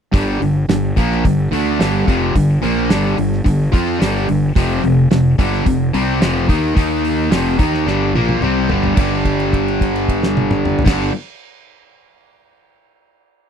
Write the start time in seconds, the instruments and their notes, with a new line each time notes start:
0.12 fingered electric bass G1, distorted electric guitar G2 D3 G3, kick, open hi-hat
0.42 fingered electric bass G1, distorted electric guitar G2 D3, open hi-hat
0.69 fingered electric bass G1, distorted electric guitar G2 D3, snare, open hi-hat
0.96 fingered electric bass A#1, distorted electric guitar A#2 F3 A#3, kick, open hi-hat
1.12 snare
1.24 fingered electric bass G1, distorted electric guitar G2 D3, kick, open hi-hat
1.52 fingered electric bass D2, distorted electric guitar D3 A3 D4, open hi-hat
1.79 fingered electric bass G1, distorted electric guitar G2 D3 G3, snare, open hi-hat
2.06 fingered electric bass F1, distorted electric guitar F2 C3 F3, kick, open hi-hat
2.35 fingered electric bass G1, distorted electric guitar G2 D3, kick, open hi-hat
2.62 fingered electric bass A#1, distorted electric guitar A#2 F3 A#3, open hi-hat
2.89 fingered electric bass G1, distorted electric guitar G2 D3 G3, snare, open hi-hat
3.17 fingered electric bass G1, distorted electric guitar G2 D3, open hi-hat
3.32 snare
3.44 fingered electric bass G1, distorted electric guitar G2 D3, kick, open hi-hat
3.72 fingered electric bass F2, distorted electric guitar F3 C4 F4, kick, open hi-hat
4.00 fingered electric bass G1, distorted electric guitar G2 D3 G3, snare, open hi-hat
4.28 fingered electric bass G1, distorted electric guitar G2 D3, open hi-hat
4.56 fingered electric bass F1, distorted electric guitar F2 C3 F3, kick, open hi-hat
4.83 fingered electric bass F1, distorted electric guitar F2 C3, open hi-hat
5.11 fingered electric bass F1, distorted electric guitar F2 C3, snare, open hi-hat
5.38 fingered electric bass G1, distorted electric guitar G2 D3 G3, kick, open hi-hat
5.53 snare
5.66 fingered electric bass F1, distorted electric guitar F2 C3, kick, open hi-hat
5.93 fingered electric bass C2, distorted electric guitar C3 G3 C4, open hi-hat
6.21 fingered electric bass F1, distorted electric guitar F2 C3 F3, snare, open hi-hat
6.49 fingered electric bass D#2, distorted electric guitar D#3 A#3 D#4, kick, open hi-hat
6.76 fingered electric bass D#2, distorted electric guitar D#3 A#3 D#4, kick, open hi-hat
7.05 open hi-hat
7.31 fingered electric bass F1, distorted electric guitar F2 C3 F3, snare, open hi-hat
7.59 fingered electric bass D#2, distorted electric guitar D#3 A#3 D#4, kick, open hi-hat
7.74 snare
7.87 fingered electric bass G1, distorted electric guitar G2 D3 G3, snare
8.14 fingered electric bass A#1, distorted electric guitar A#2 F3 A#3, high tom
8.29 high tom
8.41 fingered electric bass C2, distorted electric guitar C3 G3 C4, mid tom
8.69 fingered electric bass G1, distorted electric guitar G2 D3 G3, floor tom
8.84 floor tom
8.96 fingered electric bass G1, distorted electric guitar G2 D3, kick, crash
9.00 distorted electric guitar G3
9.25 kick, crash
9.40 crash
9.53 kick, crash
9.68 crash
9.81 kick, crash
9.96 crash
10.09 kick, crash
10.23 snare
10.37 high tom
10.51 mid tom
10.65 mid tom
10.79 floor tom
10.85 fingered electric bass G1, distorted electric guitar G2 D3 G3, kick, snare, crash